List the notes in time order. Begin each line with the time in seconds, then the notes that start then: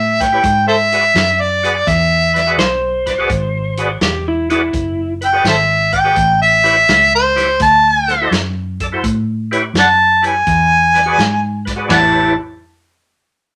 Already playing: A2 E5
0.21 B4 C#5 G5, kick, snare, closed hi-hat
0.32 E4 G4 B4 C#5
0.43 G#2, kick, closed hi-hat
0.68 A4 C5 E5
0.92 F#4 G#4 B4 D5, closed hi-hat
1.15 F#2, snare, closed hi-hat
1.41 D5
1.63 F#4 G#4 B4 D5, closed hi-hat
1.87 E2 E5, kick, snare, closed hi-hat
2.34 B4 D5, snare, closed hi-hat
2.47 F#4 G#4 B4 D5
2.58 B1 C5, snare, closed hi-hat
3.06 B4 D5, kick, snare, closed hi-hat
3.18 F#4 G#4 B4 D5
3.29 G#1, kick, closed hi-hat
3.77 F#4 G#4 B4 D5, closed hi-hat
4.01 E1 G4, snare, closed hi-hat
4.28 E4
4.50 E4 F#4 G#4 B4 D5, closed hi-hat
4.73 F#1, kick, closed hi-hat
5.21 B4 E5 G5, closed hi-hat
5.33 F#4 G#4 B4 D5
5.44 G#1 A4 C5 E5, snare, closed hi-hat
5.92 B4 D5 G5, kick, closed hi-hat
6.04 F#4 G#4 B4 D5
6.16 A1, kick, closed hi-hat
6.42 E5
6.64 E4 G4 B4 C#5, closed hi-hat
6.88 C#2, snare, closed hi-hat
7.15 C5
7.36 E4 G4 B4 C#5, snare, closed hi-hat
7.60 D2 A5, kick, snare, closed hi-hat
8.08 A4 C5, snare, closed hi-hat
8.21 E4 F#4 A4 C5
8.31 F#2, snare, closed hi-hat
8.80 A4 D5, kick, closed hi-hat
8.92 E4 F#4 A4 C5
9.04 A2, kick, closed hi-hat
9.51 E4 G4 B4 C#5, closed hi-hat
9.74 F#2, snare, closed hi-hat
9.79 D5 F#5 A5
10.22 E4 G4 B4 C#5 G#5, closed hi-hat
10.47 E2, kick, closed hi-hat
10.94 B4 D5, snare, closed hi-hat
11.06 F#4 G#4 B4 D5
11.18 G#2, snare, closed hi-hat
11.65 B4 D5, kick, snare, closed hi-hat
11.76 F#4 G#4 B4 D5
11.88 A1 E4 G4 B4 C#5 D5 F#5 A5, snare, floor tom, ride bell